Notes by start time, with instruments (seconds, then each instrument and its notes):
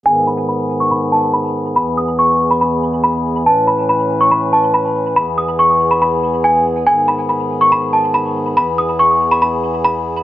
0.06 harmonium G#2 D#3 B3 G#4, celesta G#5
0.27 celesta B5
0.49 celesta B5
0.80 celesta C#6
0.91 celesta B5
1.12 celesta A5
1.33 celesta B5
1.76 harmonium E2 E3, celesta B5
1.97 celesta D#6
2.19 celesta C#6
2.51 celesta B5
2.61 celesta B5
3.04 celesta B5
3.46 harmonium A2 C#4 B4, celesta A5
3.68 celesta B5
3.89 celesta B5
4.21 celesta C#6
4.31 celesta B5
4.53 celesta A5
4.74 celesta B5
5.16 harmonium E2 B3 G#4, celesta B5
5.38 celesta D#6
5.59 celesta C#6
5.91 celesta B5
6.02 celesta B5
6.44 celesta G#5
6.87 harmonium G#2 D#3 B3, celesta G#5
7.08 celesta B5
7.29 celesta B5
7.61 celesta C#6
7.72 celesta B5
7.93 celesta A5
8.14 celesta B5
8.57 harmonium E2 E3, celesta B5
8.78 celesta D#6
8.99 celesta C#6
9.31 celesta B5
9.42 celesta B5
9.85 celesta B5